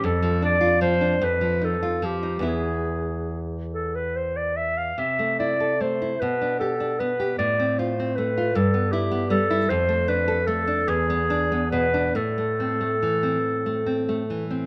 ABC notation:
X:1
M:6/8
L:1/16
Q:3/8=49
K:Am
V:1 name="Clarinet"
A2 d2 c2 B2 A2 G2 | ^G4- G z A B c d e f | e2 d2 c2 B2 A2 B2 | d2 c2 B2 A2 G2 A2 |
c2 B2 A2 ^G4 B2 | A8- A2 z2 |]
V:2 name="Nylon-string guitar"
F,, F, D F F, D F,, F, _E F F, E | [E,,B,E]12 | C, A, E A A, E B,, D G D B, G | A,, C F C A, F G,, B, E B, G, E |
F,, A, D A A, D E,, B, D B, B,, D | A,, A, C A, E, C2 A, C A, E, C |]